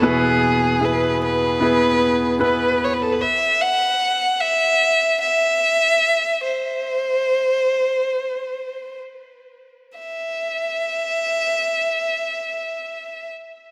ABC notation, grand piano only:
X:1
M:4/4
L:1/8
Q:1/4=72
K:E
V:1 name="Grand piano"
[B,EB]2 [B,EG]2 [B,EG]2 [B,EB]2 | z8 | z8 | z8 |]
V:2 name="Grand piano" clef=bass
[E,,B,,]8 | z8 | z8 | z8 |]